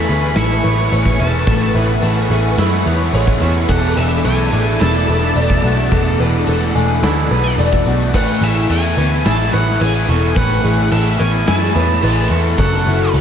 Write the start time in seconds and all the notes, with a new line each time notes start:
Already playing: A2 A3 E4 G#4 A4 B4 C#5 G#5 B5 C#6
0.08 D2 A2 E3 A3 B3 C#4 G#4
0.35 A1 A2 E3 A3 E4 A4 C#6, snare, open hi-hat
0.63 A1 A2 E3 A3 B3 B4 C#5
0.91 A1 A2 E3 A3 G#4 C#5, open hi-hat
1.05 kick
1.19 E1 A2 E3 A3 B3 C#4 E4 A5
1.47 A1 A2 E3 A3 A4 F#5, kick, open hi-hat
1.74 A1 A2 E3 A3 C#4 E4 B4
2.02 A1 A2 E3 A3 G#4 A4, open hi-hat
2.30 A1 A2 E3 A3 B3 C#4 G#4
2.58 F#2 A2 E3 A3 E4 A4, snare, open hi-hat
2.85 E2 A2 E3 A3 B3 B4 C#5
3.13 A1 A2 E3 G#3 A3 G#4 C#5, open hi-hat
3.27 kick
3.41 E2 A2 E3 A3 B3 C#4 E4
3.68 E1 E2 B2 E3 A4 E5 F#5 D6, kick, crash
3.96 E1 E2 B2 E3 D4 B4 E5
4.24 B1 E2 B2 E3 A3 A4 G#5, open hi-hat
4.52 A1 E2 B2 E3 A3 D4 G#4
4.80 E1 E2 B2 E3 D4 E4 A4 A5, snare, open hi-hat
5.07 E1 E2 B2 E3 B3 B4
5.35 E1 E2 B2 E3 A3 A4 D5, open hi-hat
5.50 kick, snare
5.63 B1 E2 B2 E3 A3 D4 F#4
5.91 E1 E2 B2 E3 A4 F#5, kick, open hi-hat
6.19 E1 E2 B2 E3 D4 B4
6.46 E1 E2 B2 E3 A3 A4, open hi-hat
6.74 E1 E2 B2 E3 A3 D4 G#4
7.02 D2 E2 B2 E3 D4 E4 A4, snare, open hi-hat
7.31 B1 E2 B2 E3 B3 B4
7.58 E1 E2 B2 E3 A3 A4 D5, open hi-hat
7.73 kick
7.86 B1 E2 B2 E3 A3 D4 F#4
8.14 A1 A2 E3 A3 B4 F#5, kick, crash
8.41 A1 A2 E3 A3 C#4 E4 G#4 E5
8.69 E2 A2 E3 A3 G#4 A4 G#5, crash
8.97 D2 A2 E3 A3 B3 C#4 B4
9.25 A1 A2 E3 A3 E4 G#4 A5, snare, crash
9.52 A1 A2 E3 A3 B3 B4 C#5 F#5
9.80 A1 A2 E3 A3 G#4 B4 G#5, crash
10.08 E1 A2 E3 A3 B3 C#4 A4
10.36 A1 A2 E3 A3 B4 F#5, kick, crash
10.64 A1 A2 E3 A3 C#4 E4 G#4
10.91 A1 A2 E3 A3 G#4 A4 E5, crash
11.18 A1 A2 E3 A3 B3 C#4 B4 G#5
11.46 F#2 A2 E3 A3 E4 G#4 A5, snare, crash
11.74 E2 A2 E3 A3 B3 B4 C#5
12.02 A1 A2 E3 G#3 A3 G#4 B4, crash
12.30 E2 A2 E3 A3 B3 C#4 A4
12.57 F#1 F#2 C#3 F#3 A4 F#5, kick, crash
12.86 F#1 F#2 C#3 F#3 C#4 E4 F#4
13.13 C#2 F#2 C#3 F#3 A4, crash